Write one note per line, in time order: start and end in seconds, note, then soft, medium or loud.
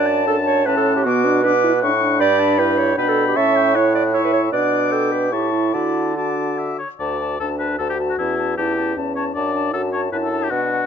0.00 0.67 F#2 medium
0.00 0.26 D4 medium
0.00 0.26 D5 medium
0.00 0.66 A5 medium
0.07 0.26 A5 medium
0.27 0.68 D4 medium
0.27 0.36 A4 medium
0.27 0.67 A5 medium
0.46 0.67 C#5 medium
0.66 1.05 A2 medium
0.66 1.07 C#4 medium
0.66 0.76 B4 medium
0.66 1.81 F#5 medium
0.66 1.05 A5 medium
0.77 0.95 A4 medium
0.96 1.06 G4 medium
1.05 1.84 B2 medium
1.05 1.27 B3 medium
1.05 1.45 F#4 medium
1.05 1.44 D6 medium
1.25 1.44 D4 medium
1.44 1.53 D4 medium
1.44 1.82 B4 loud
1.44 1.82 D6 medium
1.64 1.72 E4 medium
1.82 2.22 A2 medium
1.82 1.92 D4 medium
1.82 2.22 F#5 medium
1.82 2.22 C#6 medium
2.02 2.60 D4 medium
2.20 2.97 G2 medium
2.20 2.60 D5 loud
2.20 2.41 G5 medium
2.20 2.97 B5 medium
2.39 2.60 A5 medium
2.59 2.97 E4 medium
2.59 2.79 B4 loud
2.59 2.97 G5 medium
2.78 2.97 C#5 medium
2.97 3.35 B2 medium
2.97 3.38 D4 medium
2.97 3.10 B4 medium
2.97 3.38 G5 medium
2.97 3.38 B5 medium
3.08 3.27 A4 loud
3.28 3.38 G4 medium
3.36 4.50 A2 medium
3.36 3.77 C#4 medium
3.36 3.77 E5 loud
3.36 3.57 A5 medium
3.36 3.87 C#6 medium
3.56 3.77 G5 medium
3.75 4.13 E4 medium
3.75 3.94 C#5 medium
3.75 4.16 F#5 medium
3.95 4.03 D5 medium
4.13 4.52 E4 medium
4.13 4.26 C#5 medium
4.13 4.52 E5 medium
4.13 4.50 C#6 medium
4.25 4.32 B4 medium
4.33 4.42 C#5 medium
4.52 5.34 B2 medium
4.52 5.28 D4 medium
4.52 4.93 D5 medium
4.52 4.94 F#5 medium
4.52 5.34 D6 medium
4.92 5.13 A4 medium
4.92 5.35 G5 medium
5.12 5.33 B4 medium
5.32 5.75 A2 medium
5.32 5.75 E4 medium
5.32 5.52 G4 medium
5.32 5.73 A5 soft
5.32 5.75 C#6 medium
5.52 5.73 E4 medium
5.73 6.80 D3 medium
5.73 6.18 E4 medium
5.73 6.16 F#4 soft
5.73 6.15 A5 soft
5.73 6.16 D6 soft
6.16 6.58 D4 medium
6.16 6.78 F#4 soft
6.16 6.60 A5 medium
6.16 6.78 D6 soft
6.58 6.78 E5 medium
6.79 6.88 C#5 medium
6.99 7.35 D2 medium
6.99 7.20 F#4 soft
6.99 7.39 D5 medium
6.99 7.20 A5 soft
7.20 7.40 F#4 soft
7.20 7.39 A5 soft
7.40 7.75 D2 soft
7.40 7.77 D4 soft
7.40 7.59 F#4 soft
7.40 7.49 A4 medium
7.40 7.58 A5 soft
7.59 7.79 F#4 soft
7.59 7.78 B4 medium
7.59 7.79 A5 soft
7.78 8.14 D2 soft
7.78 8.56 F#4 soft
7.78 7.99 F#4 soft
7.78 7.89 A4 medium
7.78 7.98 A5 soft
7.90 7.98 G4 soft
7.99 8.18 F#4 soft
7.99 8.18 A5 soft
8.10 8.18 F#4 soft
8.18 8.53 E2 medium
8.18 8.38 C#4 soft
8.18 8.57 E4 medium
8.18 8.38 A5 soft
8.38 8.57 C#4 soft
8.38 8.57 A5 soft
8.57 8.92 E2 soft
8.57 8.77 C#4 soft
8.57 8.98 E4 soft
8.57 8.96 G4 medium
8.57 8.76 A5 soft
8.77 8.96 C#4 soft
8.77 8.96 A5 soft
8.96 9.31 E2 soft
8.96 9.37 C#4 soft
8.96 9.16 C#4 soft
8.96 9.16 A5 soft
9.16 9.35 C#4 soft
9.16 9.25 C#5 medium
9.16 9.35 A5 soft
9.35 9.69 F#2 medium
9.35 9.75 D4 medium
9.35 9.54 D4 soft
9.35 9.72 D5 medium
9.35 9.54 A5 soft
9.55 9.73 D4 soft
9.55 9.73 A5 soft
9.73 10.07 F#2 medium
9.73 9.92 D4 soft
9.73 10.12 F#4 medium
9.73 9.82 A4 medium
9.73 9.93 A5 soft
9.93 10.11 D4 soft
9.93 10.02 C#5 medium
9.93 10.12 A5 soft
10.12 10.46 F#2 medium
10.12 10.31 D4 soft
10.12 10.50 E4 medium
10.12 10.17 B4 medium
10.12 10.31 A5 soft
10.23 10.45 A4 medium
10.32 10.50 D4 soft
10.32 10.51 A5 soft
10.43 10.53 G4 medium
10.51 10.85 B2 medium
10.51 10.69 D4 medium
10.51 10.86 D4 medium
10.51 10.86 F#4 medium
10.51 10.70 F#5 soft
10.70 10.86 D4 soft
10.70 10.86 F#5 soft